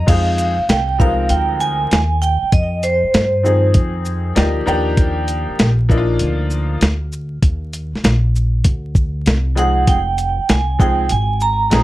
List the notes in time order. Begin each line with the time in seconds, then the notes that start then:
0.06 F2 F3 G#3 C4 D#4 G#4 F5, kick, closed hi-hat, crash
0.38 closed hi-hat, shaker
0.58 muted upright bass stroke
0.69 C2 G5, snare, closed hi-hat
0.98 F3 G3 C4 D#4 A#4 F5, kick, shaker
1.05 G#3
1.29 D2 G5, closed hi-hat
1.60 G#5, shaker
1.91 D#2, snare, closed hi-hat
2.22 G5, shaker
2.42 muted upright bass stroke
2.52 F2 D#5, kick, closed hi-hat
2.83 C5, closed hi-hat, shaker
3.03 muted upright bass stroke
3.14 G2, snare, closed hi-hat
3.43 D#3 F3 C4 D#4 G#4, shaker
3.74 F2, kick, closed hi-hat
4.05 shaker
4.35 D2 F3 A#3 D#4 G4 D5 D#5, snare, closed hi-hat
4.66 D#2 F3 A#3 D4 D#4 G4 A#5, shaker
4.97 kick, closed hi-hat
5.28 closed hi-hat, shaker
5.48 muted upright bass stroke
5.59 A#1, snare, closed hi-hat
5.89 F3 A#3 D4 D#4 E4, kick, shaker
5.97 F4
6.19 D2, closed hi-hat
6.51 shaker
6.81 D2, snare, closed hi-hat
7.13 shaker
7.42 D#2, kick, closed hi-hat
7.73 closed hi-hat, shaker
7.93 muted upright bass stroke, snare
8.04 A#1, snare, closed hi-hat
8.36 shaker
8.64 D2, kick, closed hi-hat
8.95 kick, shaker
9.26 C2, snare, closed hi-hat
9.55 F3 G#3 C4 D#4 G#4 F#5, closed hi-hat, shaker
9.87 F1 G5, kick, closed hi-hat
10.18 closed hi-hat, shaker
10.38 muted upright bass stroke
10.49 C2 G#5, snare, closed hi-hat
10.79 F3 G#3 C4 D#4 G#4 G5, kick, shaker
11.09 G#1 G#5, closed hi-hat
11.41 A#5, shaker
11.70 A#1 F3 G#3 C4 D#4 G#4, snare, closed hi-hat